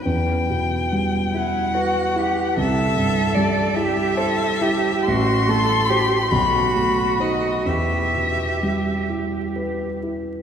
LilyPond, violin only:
\new Staff \with { instrumentName = "Violin" } { \time 6/8 \key e \minor \tempo 4. = 46 g''4. fis''4. | e''4 d''8 e''4. | c'''4. b''4 dis''8 | e''4. r4. | }